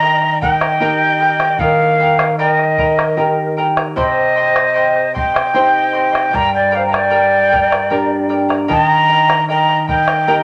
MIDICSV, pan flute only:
0, 0, Header, 1, 2, 480
1, 0, Start_track
1, 0, Tempo, 788436
1, 978, Time_signature, 3, 2, 24, 8
1, 6350, End_track
2, 0, Start_track
2, 0, Title_t, "Pan flute"
2, 0, Program_c, 0, 75
2, 0, Note_on_c, 0, 75, 99
2, 229, Note_off_c, 0, 75, 0
2, 263, Note_on_c, 0, 75, 84
2, 982, Note_on_c, 0, 70, 84
2, 991, Note_off_c, 0, 75, 0
2, 1460, Note_off_c, 0, 70, 0
2, 1467, Note_on_c, 0, 70, 68
2, 2158, Note_off_c, 0, 70, 0
2, 2419, Note_on_c, 0, 72, 79
2, 3114, Note_off_c, 0, 72, 0
2, 3138, Note_on_c, 0, 75, 86
2, 3866, Note_on_c, 0, 79, 90
2, 3875, Note_off_c, 0, 75, 0
2, 3982, Note_off_c, 0, 79, 0
2, 3986, Note_on_c, 0, 74, 72
2, 4110, Note_on_c, 0, 72, 74
2, 4119, Note_off_c, 0, 74, 0
2, 4174, Note_off_c, 0, 72, 0
2, 4178, Note_on_c, 0, 79, 52
2, 4219, Note_on_c, 0, 74, 84
2, 4229, Note_off_c, 0, 79, 0
2, 5057, Note_off_c, 0, 74, 0
2, 5294, Note_on_c, 0, 75, 99
2, 5750, Note_off_c, 0, 75, 0
2, 5775, Note_on_c, 0, 75, 86
2, 5998, Note_off_c, 0, 75, 0
2, 6020, Note_on_c, 0, 75, 86
2, 6350, Note_off_c, 0, 75, 0
2, 6350, End_track
0, 0, End_of_file